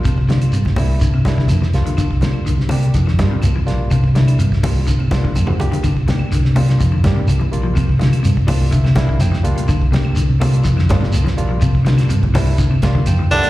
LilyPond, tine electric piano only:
\new Staff \with { instrumentName = "Tine electric piano" } { \time 4/4 \key c \mixolydian \tempo 4 = 124 << { r1 | r1 | r1 | r1 |
r4. d''8 e''8 f''8 g''4 | r1 | r2. g''8 e''8 | } \\ { r8 <g bes d' f'>8 r8 <g bes d' e'>8 r8 <g bes d' e'>8 r8 <g bes d' f'>8 | r8 <g bes d' f'>8 r8 <g bes d' g'>8 r8 <g bes d' f'>8 r8 <g bes d' f'>8 | r8 <g bes d' e'>8 r8 <g bes d' f'>8 r8 <g bes d' f'>8 r8 <g bes d' g'>8 | r8 <g bes d' g'>8 r8 <g bes d' f'>8 r8 <g bes d' g'>8 r8 <g bes d' f'>8 |
r8 <g bes d' f'>8 r8 <g bes d' f'>8 r8 <g bes d' e'>8 r8 <g bes d' f'>8 | r8 <g bes d' g'>8 r8 <g bes d' f'>8 r8 <g bes d' f'>8 r8 <g bes d' f'>8 | r8 <g bes d' f'>8 r8 <g bes d' e'>8 r8 <g bes d' f'>8 r8 <g bes d' g'>8 | } >> }